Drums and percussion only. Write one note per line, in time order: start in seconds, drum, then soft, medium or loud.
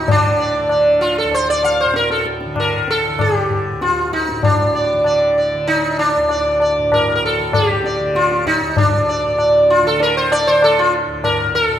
0.08 tabla tin loud
0.08 tabla ge medium
0.69 tabla na medium
1.31 tabla tin medium
1.63 tabla na soft
1.94 tabla te medium
2.10 tabla te medium
2.26 tabla ke medium
2.41 tabla te soft
2.56 tabla na medium
2.56 tabla ge medium
2.88 tabla te medium
3.19 tabla na medium
3.19 tabla ge medium
3.50 tabla ge soft
3.81 tabla te medium
3.97 tabla te medium
4.13 tabla ke medium
4.29 tabla te medium
4.43 tabla tin loud
4.43 tabla ge medium
5.04 tabla na medium
5.67 tabla tin medium
5.98 tabla na soft
6.29 tabla na medium
6.60 tabla na medium
6.92 tabla na medium
6.92 tabla ge medium
7.53 tabla na medium
7.53 tabla ge medium
7.84 tabla te medium
8.15 tabla te medium
8.31 tabla te medium
8.47 tabla ke medium
8.61 tabla te medium
8.77 tabla tin loud
8.77 tabla ge medium
9.38 tabla na medium
10.00 tabla tin medium
10.32 tabla na medium
10.62 tabla na medium
11.24 tabla na medium
11.24 tabla ge medium